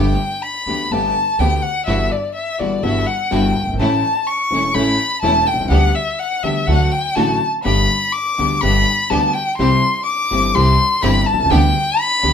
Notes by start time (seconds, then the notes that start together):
Already playing: G1 G2 D3 A3 B3 G4 G5
0.42 B5
0.66 D2 D3 A3 B3 G4
0.90 G1 G2 D3 A3 B3 G4 A5
1.39 D2 D3 A3 B3 G4 G5
1.62 F#5
1.86 G1 G2 E3 G3 B3 E4 F#4 E5
2.11 D5
2.35 E5
2.59 G1 G2 E3 G3 B3 E4 F#4 D5
2.83 G1 G2 E3 G3 B3 E4 F#4 E5
3.07 F#5
3.31 G1 G2 E3 G3 B3 E4 F#4 G5
3.61 F#1
3.67 G1
3.73 G#1
3.79 A1 A2 E3 A3 C#4 E4 A4 A5
4.27 C#6
4.50 E1 E2 E3 A3 C#4 E4 A4
4.74 A1 A2 E3 A3 C#4 E4 A4 B5
5.22 E1 E2 E3 A3 C#4 E4 A4 A5
5.47 G5
5.53 B1
5.59 C2
5.64 C#2
5.70 D2 D3 G3 B3 D4 G4 F#5
5.95 E5
6.19 F#5
6.43 D2 D3 G3 B3 D4 G4 E5
6.67 D2 D3 F#3 A3 D4 F#4 F#5
6.92 G5
7.15 A1 A2 D3 F#3 A3 D4 F#4 A5
7.64 G1 G2 D3 G3 B3 D4 G4 B5
8.12 D6
8.38 D2 D3 G3 B3 D4 G4
8.61 G1 G2 D3 G3 B3 D4 G4 B5
9.10 D2 D3 G3 B3 D4 G4 A5
9.33 G5
9.58 C2 C3 E3 G3 C4 E4 G4 C6
10.06 D6
10.31 G1 G2 E3 G3 C4 E4 G4
10.54 C2 C3 E3 G3 C4 E4 G4 C6
11.02 G1 G2 E3 G3 C4 E4 G4 B5
11.26 A5
11.33 B1
11.39 C2
11.45 C#2
11.50 D2 D3 G3 B3 D4 G4 G5
11.99 B5
12.22 D2 D3 G3 B3 D4 G4